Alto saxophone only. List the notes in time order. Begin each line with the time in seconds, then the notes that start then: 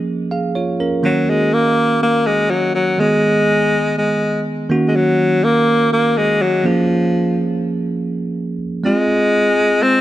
1.05 F#3
1.30 G#3
1.54 A#3
2.03 A#3
2.26 G#3
2.51 F#3
2.75 F#3
3.00 G#3
3.98 G#3
4.88 G#3
4.96 F#3
5.44 A#3
5.93 A#3
6.17 G#3
6.42 F#3
6.66 F3
8.85 G#3
9.83 C4